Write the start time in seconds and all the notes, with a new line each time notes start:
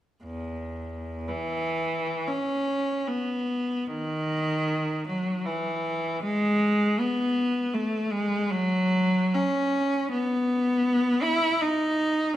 0.24 E2
1.28 E3
2.27 C#4
3.07 B3
3.87 D#3
5.07 F#3
5.45 E3
6.23 G#3
6.99 B3
7.73 A3
8.12 G#3
8.50 F#3
9.34 C#4
10.11 B3
11.22 E4
11.61 D#4